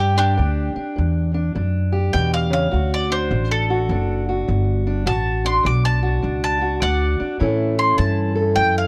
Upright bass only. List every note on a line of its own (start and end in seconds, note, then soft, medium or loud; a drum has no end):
0.00 0.36 G2 medium
0.39 0.73 D2 medium
0.76 muted upright bass stroke soft
0.98 1.54 E2 medium
1.55 2.12 F#2 medium
2.14 2.71 E2 medium
2.73 3.29 D2 medium
3.31 3.87 A1 loud
3.89 4.46 F#1 medium
4.48 5.05 G1 medium
5.06 5.63 A1 medium
5.65 6.21 B1 medium
6.24 6.80 C#2 medium
6.82 7.17 D2 medium
7.20 muted upright bass stroke soft
7.41 7.97 A2 medium
7.99 8.55 G2 medium
8.56 8.87 F#2 medium